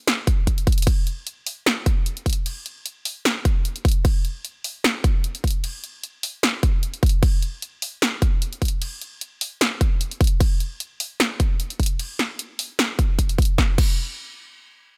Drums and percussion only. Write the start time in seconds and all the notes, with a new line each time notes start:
0.07 snare, closed hi-hat
0.27 kick, closed hi-hat
0.47 kick, closed hi-hat
0.58 closed hi-hat
0.67 kick, closed hi-hat
0.72 closed hi-hat
0.78 closed hi-hat
0.82 closed hi-hat
0.87 kick, closed hi-hat, crash
1.07 closed hi-hat
1.27 closed hi-hat
1.47 open hi-hat
1.66 snare, closed hi-hat
1.86 kick, closed hi-hat
2.06 closed hi-hat
2.17 closed hi-hat
2.26 kick, closed hi-hat
2.30 closed hi-hat
2.33 closed hi-hat
2.46 closed hi-hat, crash
2.66 closed hi-hat
2.86 closed hi-hat
3.05 open hi-hat
3.25 snare, closed hi-hat
3.45 kick, closed hi-hat
3.65 closed hi-hat
3.76 closed hi-hat
3.85 kick, closed hi-hat
3.88 closed hi-hat
3.92 closed hi-hat
4.05 kick, closed hi-hat, crash
4.25 closed hi-hat
4.45 closed hi-hat
4.64 open hi-hat
4.84 snare, closed hi-hat
5.04 kick, closed hi-hat
5.24 closed hi-hat
5.35 closed hi-hat
5.44 kick, closed hi-hat
5.47 closed hi-hat
5.51 closed hi-hat
5.64 closed hi-hat, crash
5.84 closed hi-hat
6.03 closed hi-hat
6.23 open hi-hat
6.43 snare, closed hi-hat
6.63 kick, closed hi-hat
6.83 closed hi-hat
6.94 closed hi-hat
7.03 kick, closed hi-hat
7.06 closed hi-hat
7.09 closed hi-hat
7.23 kick, closed hi-hat, crash
7.42 closed hi-hat
7.62 closed hi-hat
7.82 open hi-hat
8.02 snare, closed hi-hat
8.22 kick, closed hi-hat
8.42 closed hi-hat
8.53 closed hi-hat
8.62 kick, closed hi-hat
8.65 closed hi-hat
8.68 closed hi-hat
8.82 closed hi-hat, crash
9.01 closed hi-hat
9.21 closed hi-hat
9.41 open hi-hat
9.61 snare, closed hi-hat
9.81 kick, closed hi-hat
10.01 closed hi-hat
10.11 closed hi-hat
10.21 kick, closed hi-hat
10.24 closed hi-hat
10.27 closed hi-hat
10.40 kick, closed hi-hat, crash
10.60 closed hi-hat
10.80 closed hi-hat
11.00 open hi-hat
11.20 snare, closed hi-hat
11.40 kick, closed hi-hat
11.60 closed hi-hat
11.70 closed hi-hat
11.80 kick, closed hi-hat
11.83 closed hi-hat
11.86 closed hi-hat
11.99 closed hi-hat, crash
12.19 snare, closed hi-hat
12.39 closed hi-hat
12.59 open hi-hat
12.79 snare, closed hi-hat
12.99 kick, closed hi-hat
13.19 kick, closed hi-hat
13.29 closed hi-hat
13.38 kick, closed hi-hat
13.42 closed hi-hat
13.45 closed hi-hat
13.58 kick, snare
13.78 kick, crash